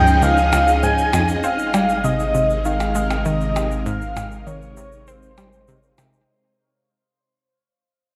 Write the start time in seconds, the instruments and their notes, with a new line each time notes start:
Already playing: analog synth bass C#2, string machine F3 C#4 D#4 G#4 D#5, soft synth lead G5
0.07 shaker
0.22 synth arpeggio sound C#2, soft synth lead F5, shaker
0.37 shaker
0.53 synth arpeggio sound C#2, percussion blips, shaker
0.68 shaker
0.83 synth arpeggio sound G#2, soft synth lead G#5, shaker
0.98 shaker
1.13 synth arpeggio sound F2, percussion blips, shaker
1.28 shaker
1.44 analog synth bass G#1, string machine G#3, synth arpeggio sound C4, soft synth lead F5, shaker
1.59 shaker
1.74 synth arpeggio sound G3, percussion blips, shaker
1.78 string machine C3
1.89 shaker
2.04 synth arpeggio sound C3, soft synth lead D#5, shaker
2.20 shaker
2.35 synth arpeggio sound C3, string machine A#4, shaker
2.50 shaker
2.65 synth arpeggio sound D#3, soft synth lead F5, shaker
2.80 percussion blips, shaker
2.95 synth arpeggio sound G#3, shaker
3.10 percussion blips, shaker
3.25 synth arpeggio sound D#3, soft synth lead D#5, shaker
3.41 shaker
3.56 synth arpeggio sound C3, percussion blips, shaker
3.71 shaker
3.86 synth arpeggio sound G#2, soft synth lead F5, shaker
4.02 shaker
4.16 synth arpeggio sound G#2, percussion blips, shaker
4.32 shaker
4.47 synth arpeggio sound D#3, soft synth lead C#5, shaker
4.62 shaker
4.77 synth arpeggio sound C3, shaker
4.92 shaker
5.07 synth arpeggio sound C4, soft synth lead C5, shaker
5.23 shaker
5.38 synth arpeggio sound G3, percussion blips, shaker
5.53 shaker
5.68 synth arpeggio sound C3, shaker
5.83 shaker
5.98 synth arpeggio sound C3, percussion blips, shaker
6.13 shaker